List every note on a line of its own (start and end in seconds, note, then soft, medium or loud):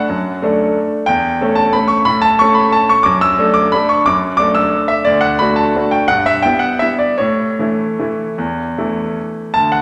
0.00 0.74 F#5 medium
0.09 0.41 F#2 medium
0.42 1.05 A3 medium
0.42 1.05 D4 medium
0.42 1.05 A4 medium
1.06 1.40 E2 medium
1.06 1.57 G5 loud
1.41 1.72 A3 medium
1.41 1.72 C#4 medium
1.41 1.72 A4 medium
1.55 1.74 A5 medium
1.73 2.04 A3 medium
1.73 2.05 C#4 soft
1.73 2.05 A4 medium
1.73 1.91 B5 medium
1.88 2.06 C#6 medium
2.05 2.39 A2 medium
2.05 2.23 B5 loud
2.22 2.39 A5 loud
2.39 3.03 A3 medium
2.39 3.03 C#4 medium
2.39 3.03 A4 medium
2.39 2.57 C#6 loud
2.55 2.73 B5 loud
2.72 2.90 A5 loud
2.89 3.06 C#6 loud
3.03 3.38 F#2 medium
3.03 3.21 D6 loud
3.21 3.56 E6 loud
3.39 3.70 A3 medium
3.39 3.70 D4 medium
3.39 3.70 A4 medium
3.54 3.72 D6 loud
3.72 4.04 A3 soft
3.72 4.04 D4 medium
3.72 4.05 A4 medium
3.72 3.90 B5 loud
3.89 4.06 C#6 medium
4.06 4.39 F#2 medium
4.06 4.35 D6 loud
4.37 5.03 A3 soft
4.37 5.03 D4 soft
4.37 5.03 A4 medium
4.37 4.56 D6 loud
4.55 4.90 E6 loud
4.88 5.06 E5 medium
5.05 5.39 D2 medium
5.05 5.22 D5 medium
5.21 5.39 F#5 loud
5.39 5.72 A3 soft
5.39 5.73 D4 soft
5.39 5.73 F#4 medium
5.39 5.57 B5 loud
5.56 5.92 A5 medium
5.76 6.07 A3 soft
5.76 6.07 D4 soft
5.76 6.07 F#4 soft
5.91 6.09 G5 medium
6.08 6.43 G2 medium
6.08 6.26 F#5 loud
6.26 6.44 E5 loud
6.43 6.78 G3 soft
6.43 6.78 B3 medium
6.43 6.78 E4 medium
6.43 6.61 G5 loud
6.59 6.79 F#5 medium
6.79 7.16 G3 soft
6.79 7.16 B3 soft
6.79 7.17 E4 soft
6.79 6.99 E5 medium
6.99 7.19 D5 medium
7.18 7.58 A2 medium
7.18 9.35 C#5 medium
7.59 7.95 E3 soft
7.59 7.95 A3 soft
7.59 7.95 E4 medium
7.99 8.35 E3 soft
7.99 8.35 A3 soft
7.99 8.35 E4 soft
8.38 8.76 E2 medium
8.78 9.51 E3 soft
8.78 9.52 A3 soft
8.78 9.52 E4 soft
9.54 9.82 D2 soft
9.54 9.72 A5 medium
9.72 9.82 F#5 medium